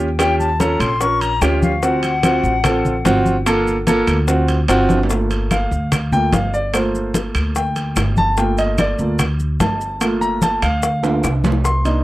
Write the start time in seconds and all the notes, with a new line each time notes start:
Already playing: D#2
0.19 C#4 F4 G4 G5, high bongo, high conga, high timbale, claves, maracas
0.39 A5, high conga, maracas
0.60 C#4 F4 A4 A#5, high bongo, high conga, high timbale, maracas
0.80 A#1 C6, high bongo, high timbale, claves, maracas
1.01 C#4 F4 A#4 C#6, high bongo, high conga, maracas
1.21 A#5, high bongo, high conga, high timbale, maracas
1.41 D2 C#4 F4 G4 G5, high bongo, low bongo, high conga, high timbale, low timbale, claves, maracas
1.63 F5, high bongo, high conga, maracas
1.83 C4 F4 F#4 F#5, high bongo, high conga, maracas
2.03 high conga, high timbale, maracas
2.23 C4 F4 F#4, high bongo, high conga, high timbale, claves, maracas
2.44 A1, maracas
2.64 C4 F4 A4, high bongo, high conga, low conga, high timbale, claves, maracas
2.85 high conga, low conga, maracas
3.05 G1 C4 F4 F#4, high bongo, low bongo, high conga, high timbale, low timbale, maracas
3.26 high conga, maracas
3.46 A#3 F4 A4, high bongo, high conga, high timbale, claves, maracas
3.67 high conga, maracas
3.87 A#3 F4 A4, high bongo, high conga, high timbale, maracas
4.07 D2, high bongo, high timbale, claves, maracas
4.28 C4 F4 F#4, high bongo, high conga, maracas
4.48 high bongo, high conga, high timbale, maracas
4.68 G1 C4 F4 F#4, high bongo, low bongo, high conga, high timbale, claves, maracas
4.89 high bongo, high conga, high timbale, maracas
5.03 low timbale
5.10 A3 A#3 F4, high bongo, high conga, maracas
5.31 high conga, high timbale, maracas
5.51 F5, high bongo, high conga, high timbale, claves, maracas
5.71 D2, maracas
5.92 high bongo, high conga, low conga, high timbale, claves, maracas
6.12 A3 A#3 F4 G5, high conga, low conga, maracas
6.33 G1 F5, high bongo, low bongo, high conga, high timbale, low timbale, maracas
6.54 D5, maracas
6.73 A3 A#3 F4 C5, high bongo, high conga, high timbale, claves, maracas
6.94 high conga, maracas
7.14 high bongo, high conga, high timbale, maracas
7.35 D2, high bongo, high timbale, claves, maracas
7.55 G5, high bongo, high conga, maracas
7.76 high bongo, high conga, high timbale, maracas
7.96 G1, high bongo, low bongo, high conga, high timbale, low timbale, claves, maracas
8.17 A5, high bongo, high conga, maracas
8.37 A3 A#3 F4 G5, high bongo, high conga, maracas
8.58 D#5, high conga, high timbale, maracas
8.78 D5, high bongo, high conga, high timbale, claves, maracas
8.99 D2 A3 A#3 F4, maracas
9.19 high bongo, high conga, low conga, high timbale, claves, maracas
9.40 high conga, maracas
9.60 G1 A5, high bongo, low bongo, high conga, high timbale, low timbale, maracas
9.81 maracas
10.01 A3 A#3 F4, high bongo, high conga, high timbale, claves, maracas
10.21 A#5, high conga, maracas
10.42 A5, high bongo, high conga, high timbale, maracas
10.62 D2 F5, high bongo, high timbale, claves, maracas
10.83 F5, high bongo, high conga, maracas
11.03 A3 A#3 F4, high bongo, high conga, high timbale, maracas
11.24 C2, high bongo, high conga, high timbale, claves, maracas
11.44 high conga, low timbale, maracas
11.52 low bongo
11.64 C6, high bongo, high conga, maracas
11.84 A#3 D4 D#4, high conga, high timbale, maracas